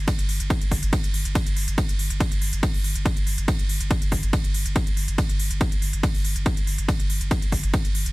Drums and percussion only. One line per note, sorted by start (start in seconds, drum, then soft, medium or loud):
0.08 kick loud
0.08 closed hi-hat medium
0.08 ride medium
0.19 closed hi-hat medium
0.29 open hi-hat loud
0.40 closed hi-hat medium
0.50 kick loud
0.50 closed hi-hat medium
0.50 ride medium
0.61 closed hi-hat medium
0.71 kick medium
0.71 open hi-hat loud
0.83 closed hi-hat medium
0.93 kick loud
0.93 closed hi-hat medium
0.93 ride medium
1.04 closed hi-hat medium
1.14 open hi-hat loud
1.25 closed hi-hat medium
1.35 kick loud
1.35 closed hi-hat medium
1.35 ride medium
1.47 closed hi-hat medium
1.57 open hi-hat loud
1.68 closed hi-hat medium
1.78 kick loud
1.78 closed hi-hat medium
1.78 ride medium
1.89 closed hi-hat medium
1.99 open hi-hat loud
2.10 closed hi-hat medium
2.20 kick loud
2.20 closed hi-hat medium
2.20 ride medium
2.32 closed hi-hat medium
2.42 open hi-hat loud
2.53 closed hi-hat medium
2.63 kick loud
2.63 closed hi-hat medium
2.63 ride medium
2.74 open hi-hat medium
2.84 open hi-hat loud
2.95 closed hi-hat medium
3.06 kick loud
3.06 closed hi-hat medium
3.06 ride medium
3.17 closed hi-hat medium
3.27 open hi-hat loud
3.38 closed hi-hat medium
3.48 kick loud
3.48 closed hi-hat medium
3.48 ride medium
3.59 closed hi-hat medium
3.69 open hi-hat loud
3.81 closed hi-hat medium
3.91 kick loud
3.91 closed hi-hat medium
3.91 ride medium
4.02 closed hi-hat medium
4.12 kick medium
4.12 open hi-hat loud
4.23 closed hi-hat medium
4.33 kick loud
4.33 closed hi-hat medium
4.33 ride medium
4.44 closed hi-hat medium
4.54 open hi-hat loud
4.66 closed hi-hat medium
4.76 kick loud
4.76 closed hi-hat medium
4.76 ride medium
4.87 closed hi-hat medium
4.97 open hi-hat loud
5.08 closed hi-hat medium
5.18 kick loud
5.18 closed hi-hat medium
5.18 ride medium
5.29 closed hi-hat medium
5.39 open hi-hat loud
5.51 closed hi-hat medium
5.61 kick loud
5.61 closed hi-hat medium
5.61 ride medium
5.72 closed hi-hat medium
5.82 open hi-hat loud
5.93 closed hi-hat medium
6.03 kick loud
6.03 closed hi-hat medium
6.03 ride medium
6.15 open hi-hat medium
6.25 open hi-hat loud
6.36 closed hi-hat medium
6.46 kick loud
6.46 closed hi-hat medium
6.46 ride medium
6.57 closed hi-hat medium
6.67 open hi-hat loud
6.78 closed hi-hat medium
6.89 kick loud
6.89 closed hi-hat medium
6.89 ride medium
7.00 closed hi-hat medium
7.10 open hi-hat loud
7.21 closed hi-hat medium
7.31 kick loud
7.31 closed hi-hat medium
7.31 ride medium
7.42 closed hi-hat medium
7.52 kick medium
7.52 open hi-hat loud
7.64 closed hi-hat medium
7.74 kick loud
7.74 closed hi-hat medium
7.74 ride medium
7.85 closed hi-hat medium
7.95 open hi-hat loud
8.06 closed hi-hat medium